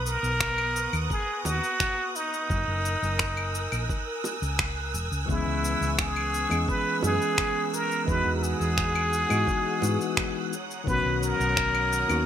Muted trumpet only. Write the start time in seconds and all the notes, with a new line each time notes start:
0.06 A#4
1.11 G#4
1.45 F#4
2.16 D#4
5.30 E4
6.00 G#4
6.69 B4
7.04 G#4
7.73 A#4
8.08 B4
8.36 A#4
8.43 G#4
10.88 B4
11.23 A#4